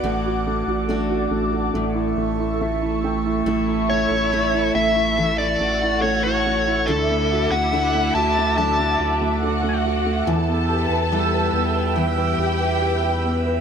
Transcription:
Already playing: F#3 B3 D4 D5 F#5 D6
0.03 A1 A2 A3 F#4 A4
0.26 F#4
0.47 A3
0.67 A1 F#4
0.88 A3 D4 F#4
1.10 F#4
1.30 A1 A3
1.52 F#4
1.73 A1 A2 A3 E5 C#6
1.95 E4
2.16 A1 A3
2.39 E4
2.61 A3 E5
2.82 E4
3.04 A3 G5
3.26 E4
3.45 A1 A2 A3 E4 E5
3.68 E4
3.90 A3 C#5
4.10 A1 E4
4.32 A3 E4
4.54 E4
4.75 A1 A3 E5
4.95 E4
5.18 E3 A3
5.38 E4 D5
5.60 A1 A3 F#4 F#5
5.83 E4
6.02 A3 C#5
6.24 E4 C#5
6.46 A3
6.67 E4
6.87 D2 D3 E4 A4 E5 F#5 D6
7.10 A3
7.32 F#4
7.51 D2 A3 F#5
7.72 D3 A3 D4 E4
7.95 A3
8.15 D2 F#4 A5
8.37 A3
8.58 D3 F#3 A5
8.79 A3
8.99 D2 F#4
9.21 A3
9.42 D3 F#4 F#5
9.63 A3
9.86 F#4
10.06 A3
10.26 E2 E3 E4 A4 B4 G5 A5 E6
10.48 B3
10.69 G4
10.90 E2 B4
11.12 G3 B3 E4 G4
11.33 B4
11.53 E2 B3
11.76 B4
11.96 E3 B3 G4 G5
12.18 B4
12.38 E2 G4
12.60 B4
12.80 G4
13.02 B4
13.24 B3
13.46 B4

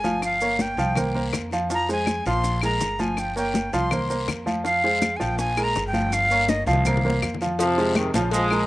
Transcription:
Already playing: G1 G#5
0.04 F3 F4 F5, high bongo, high conga, short guiro, maracas
0.22 F5, high bongo, high conga, long guiro, claves, maracas
0.40 A#3 A#4 C#5, high conga, maracas
0.59 G5, high bongo, high conga, short guiro, maracas
0.77 C2 F3 F4 F5, high bongo, high conga, short guiro, maracas
0.96 A#3 A#4 C5, high bongo, high conga, low conga, long guiro, claves, maracas
1.14 A#3 A#4 C5, high bongo, high conga, low conga
1.33 F2, high bongo, low bongo, high conga, short guiro, claves, maracas
1.51 F3 F4 F5, high bongo, short guiro, maracas
1.70 F3 F4 F5 A#5, high bongo, high conga, long guiro, maracas
1.89 G#3 G#4 C5, high conga, maracas
1.93 G#5
2.06 high bongo, high conga, short guiro, claves, maracas
2.26 A#1 F3 F4 F5 C6, high bongo, high conga, short guiro, maracas
2.44 high bongo, high conga, long guiro, maracas
2.61 G#3 G#4 A#4 A#5, high bongo, high conga, claves, maracas
2.81 G1, high bongo, low bongo, high conga, short guiro, maracas
2.99 F3 F4 F5 G#5, high bongo, high conga, short guiro, maracas
3.17 G5, high bongo, high conga, long guiro, claves, maracas
3.36 A#3 A#4 C#5 G5, high conga, maracas
3.54 high bongo, high conga, short guiro, maracas
3.72 C2 F3 F4 F5 C6, high bongo, high conga, short guiro, maracas
3.91 A#3 A#4 C5, high bongo, high conga, low conga, long guiro, claves, maracas
4.10 A#3 A#4 C5, high bongo, high conga, maracas
4.28 F2, high bongo, low bongo, high conga, short guiro, claves, maracas
4.46 F3 F4 F5, high bongo, high conga, short guiro, maracas
4.64 F3 F4 F5, high bongo, high conga, long guiro, maracas
4.84 G#3 G#4 C5, high conga
5.02 high bongo, high conga, short guiro, claves, maracas
5.17 F3 F4 F5 G5 G#5, high bongo, high conga
5.21 A#1, short guiro, maracas
5.38 G#5, high bongo, high conga, long guiro, maracas
5.57 G#3 G#4 A#4, high bongo, high conga, claves, maracas
5.64 A#5
5.75 G1, high bongo, low bongo, high conga, short guiro, maracas
5.87 G5
5.93 F3 F4 F5, high bongo, high conga, short guiro, maracas
6.12 F5, high bongo, high conga, long guiro, claves, maracas
6.31 A#3 A#4 C#5, high conga, maracas
6.48 D#5, high bongo, high conga, short guiro, maracas
6.67 C2 F3 F4 F5, high conga, short guiro, maracas
6.73 low bongo
6.85 A#3 A#4 C5, low bongo, high conga, low conga, long guiro, claves, maracas
6.97 low bongo
7.04 A#3 A#4 C5, high conga, low conga
7.10 low bongo
7.22 F2, low bongo, high conga, short guiro, claves, maracas
7.34 low bongo
7.41 F3 F4 F5, short guiro, maracas
7.46 low bongo
7.59 C3 F3 F4 F5, cowbell, high conga, long guiro, maracas
7.78 G#3 G#4 C5, high conga, maracas
7.95 C3 D#3, cowbell, high conga, short guiro, claves, maracas
8.14 A#1 C#3 F3 F4 F5, cowbell, high conga, short guiro, maracas
8.31 F3 G#3, cowbell, high conga, long guiro, maracas
8.51 G#3 G#4 A#4, high conga, claves, maracas

